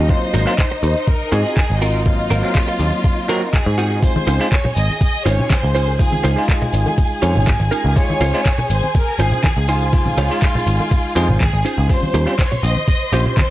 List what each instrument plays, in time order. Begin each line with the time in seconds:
Already playing: string section D#4 D#5
0.09 tine electric piano F#3 A#3 C4 F4, violin section C5, kick, shaker
0.23 shaker
0.34 picked electric bass G#1, clean electric guitar C4 F4 F#4 A#4, open hi-hat, shaker
0.46 tine electric piano F#3 A#3 C4 F4, shaker
0.58 kick, clap, shaker
0.71 muted clean electric guitar stroke, shaker
0.83 picked electric bass D#2, violin section C5, muted clean electric guitar stroke, open hi-hat, shaker
0.97 shaker
1.08 violin section A#4, muted clean electric guitar stroke, kick, shaker
1.21 shaker
1.32 picked electric bass G#2, clean electric guitar C4 F4 F#4 G#4, violin section G#4, open hi-hat, shaker
1.46 shaker
1.57 kick, clap, shaker
1.70 picked electric bass G#1, shaker
1.81 clean electric guitar C4 F4 F#4 A#4, violin section F4, open hi-hat, shaker
1.95 shaker
2.06 tine electric piano F#3 A#3 C4 F5, violin section F4, kick, shaker
2.20 shaker
2.30 picked electric bass G#1, clean electric guitar C4 F4 F#4 A#4, open hi-hat, shaker
2.43 tine electric piano F#3 A#3 C4 F5, shaker
2.55 kick, clap, shaker
2.68 muted clean electric guitar stroke, shaker
2.79 picked electric bass D#2, muted clean electric guitar stroke, open hi-hat, shaker
2.93 shaker
3.04 muted clean electric guitar stroke, kick, shaker
3.18 shaker
3.28 tine electric piano F#3 A#3 C4 F#4, clean electric guitar C4 F4 F#4 A#4, open hi-hat, shaker
3.43 shaker
3.53 violin section G#4, kick, clap, shaker
3.66 picked electric bass G#2, shaker
3.78 clean electric guitar C4 F4 F#4 G#4, open hi-hat, shaker
3.92 shaker
4.02 tine electric piano G#3 C4 D#4 F4, string section G#4 G#5, violin section C5, kick, ride, tambourine, shaker
4.16 tambourine, high conga, shaker
4.27 picked electric bass C#2, clean electric guitar C#4 D#4 F4 C5, open hi-hat, tambourine, high bongo, shaker
4.40 tine electric piano G#3 C4 D#4 F4, tambourine, shaker
4.52 violin section C#5, kick, clap, ride, tambourine, shaker
4.64 muted clean electric guitar stroke, tambourine, low conga, shaker
4.76 picked electric bass G#1, violin section D#5, muted clean electric guitar stroke, open hi-hat, tambourine, shaker
4.89 tambourine, high conga, shaker
5.00 violin section D#5, muted clean electric guitar stroke, kick, ride, tambourine, shaker
5.14 tambourine, shaker
5.25 picked electric bass G#1, clean electric guitar C#4 D#4 F4 C5, violin section C#5, open hi-hat, tambourine, shaker
5.39 tambourine, low conga, shaker
5.50 violin section C5, kick, clap, ride, tambourine, high conga, shaker
5.63 picked electric bass C#2, tambourine, shaker
5.75 clean electric guitar C#4 D#4 F4 C5, open hi-hat, tambourine, shaker
5.87 tambourine, high bongo, shaker
5.99 tine electric piano G#3 D#4 F4 C5, violin section G#4, kick, ride, tambourine, shaker
6.12 tambourine, high conga, shaker
6.23 picked electric bass C#2, clean electric guitar C#4 D#4 F4 C5, open hi-hat, tambourine, high bongo, shaker
6.36 tine electric piano G#3 D#4 F4, tambourine, shaker
6.48 kick, clap, ride, tambourine, shaker
6.61 muted clean electric guitar stroke, tambourine, low conga, shaker
6.72 picked electric bass G#1, muted clean electric guitar stroke, open hi-hat, tambourine, shaker
6.86 tambourine, high bongo, high conga, shaker
6.98 muted clean electric guitar stroke, kick, ride, tambourine, shaker
7.11 tambourine, shaker
7.22 picked electric bass F2, clean electric guitar C#4 D#4 F4 C#5, open hi-hat, tambourine, shaker
7.35 picked electric bass G#1, tambourine, low conga, shaker
7.47 kick, clap, ride, tambourine, high conga, shaker
7.60 picked electric bass G#1, tambourine, shaker
7.71 clean electric guitar C#4 D#4 F4 A#4, open hi-hat, tambourine, shaker
7.85 picked electric bass C#2, tambourine, shaker
7.96 tine electric piano G#3 D#4 F4 C#5, violin section C#5, kick, ride, tambourine, shaker
8.10 tambourine, high conga, shaker
8.20 picked electric bass C#2, clean electric guitar C#4 D#4 F4 C5, open hi-hat, tambourine, high bongo, shaker
8.34 tine electric piano G#3 C4 D#4 F4, tambourine, shaker
8.46 kick, clap, ride, tambourine, shaker
8.58 muted clean electric guitar stroke, tambourine, low conga, shaker
8.70 picked electric bass G#1, violin section C5, muted clean electric guitar stroke, open hi-hat, tambourine, shaker
8.83 tambourine, high conga, shaker
8.95 violin section A#4, muted clean electric guitar stroke, kick, ride, tambourine, shaker
9.08 tambourine, shaker
9.19 picked electric bass G#1, clean electric guitar C#4 D#4 F4 C5, violin section G#4, open hi-hat, tambourine, shaker
9.32 tambourine, low conga, shaker
9.43 kick, clap, ride, tambourine, high conga, shaker
9.57 picked electric bass C#2, tambourine, shaker
9.68 clean electric guitar C#4 D#4 F4 C5, violin section F4, open hi-hat, tambourine, shaker
9.81 tambourine, high bongo, shaker
9.93 tine electric piano G#3 D#4 F4 C5, violin section F4, kick, ride, tambourine, shaker
10.06 tambourine, high conga, low conga, shaker
10.17 picked electric bass C#2, clean electric guitar C#4 D#4 F4 C#5, open hi-hat, tambourine, high bongo, shaker
10.29 tine electric piano G#3 D#4 F4, tambourine, shaker
10.42 kick, clap, ride, tambourine, shaker
10.55 muted clean electric guitar stroke, tambourine, low conga, shaker
10.67 picked electric bass G#1, muted clean electric guitar stroke, open hi-hat, tambourine, shaker
10.79 tambourine, high bongo, high conga, shaker
10.91 muted clean electric guitar stroke, kick, ride, tambourine, shaker
11.04 tambourine, shaker
11.15 picked electric bass F2, tine electric piano G#3 C4 D#4 G#4, clean electric guitar C#4 D#4 F4 C5, open hi-hat, tambourine, shaker
11.29 picked electric bass G#1, tambourine, low conga, shaker
11.40 violin section G#4, kick, clap, ride, tambourine, high conga, shaker
11.53 picked electric bass G#1, tambourine, shaker
11.65 clean electric guitar C#4 D#4 F4 C5, open hi-hat, tambourine, shaker
11.77 picked electric bass C#2, tambourine, shaker
11.89 tine electric piano G3 C4 C#4 F4, violin section C5, string section C5 C6, kick, ride, tambourine, shaker
12.02 tambourine, high conga, shaker
12.14 picked electric bass D#2, clean electric guitar C#4 F4 G4 C5, open hi-hat, tambourine, high bongo, shaker
12.26 tine electric piano G3 C4 C#4 F4, tambourine, shaker
12.38 violin section C#5, kick, clap, ride, tambourine, shaker
12.51 muted clean electric guitar stroke, tambourine, low conga, shaker
12.63 picked electric bass A#1, violin section D#5, muted clean electric guitar stroke, open hi-hat, tambourine, shaker
12.76 tambourine, high conga, shaker
12.88 violin section D#5, muted clean electric guitar stroke, kick, ride, tambourine, shaker
13.01 tambourine, shaker
13.12 picked electric bass A#1, clean electric guitar C#4 F4 G4 C5, open hi-hat, tambourine, shaker
13.25 tambourine, low conga, shaker
13.37 violin section C5, kick, clap, ride, tambourine, high conga, shaker